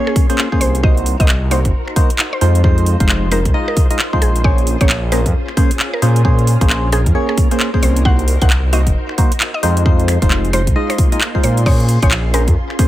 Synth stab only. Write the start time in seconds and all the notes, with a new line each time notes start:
Already playing: A#3 C#4 G#4 C#5
0.30 A#3 C#4 G#4 C5
0.52 A#3 C#4 G#4 C5
0.83 A#3 D#4 F#4 C5
1.20 A#3 D#4 F#4 C5
1.51 A#3 D#4 F#4 C5
1.96 A#3 D#4 F#4 C5
2.41 G#3 D#4 F4 C5
2.64 G#3 D#4 F4 C5
3.00 G#3 D#4 F4 C5
3.32 G#3 D#4 F4 C5
3.54 G#3 D#4 F4 D#5
3.91 G#3 D#4 F4 D#5
4.13 G#3 D#4 F4 C5
4.44 A#3 C#4 G#4 C5
4.81 A#3 C#4 G#4 C5
5.12 A#3 C#4 G#4 C5
5.57 A#3 C#4 G#4 C5
6.02 A#3 C#4 G#4 C5
6.25 A#3 C#4 G#4 C5
6.61 A#3 C#4 G#4 C5
6.92 A#3 C#4 G#4 C5
7.15 A#3 C#4 G#4 C#5
7.51 A#3 C#4 G#4 C5
7.74 A#3 C#4 G#4 C5
8.05 A#3 D#4 F#4 C5
8.42 A#3 D#4 F#4 C5
8.73 A#3 D#4 F#4 C5
9.18 A#3 D#4 F#4 C5
9.63 G#3 D#4 F4 C5
9.86 G#3 D#4 F4 C5
10.22 G#3 D#4 F4 C5
10.53 G#3 D#4 F4 C5
10.76 G#3 D#4 F4 D#5
11.12 G#3 D#4 F4 D#5
11.35 G#3 D#4 F4 C5
11.66 A#3 C#4 G#4 C5
12.03 A#3 C#4 G#4 C5
12.34 A#3 C#4 G#4 C5
12.79 A#3 C#4 G#4 C5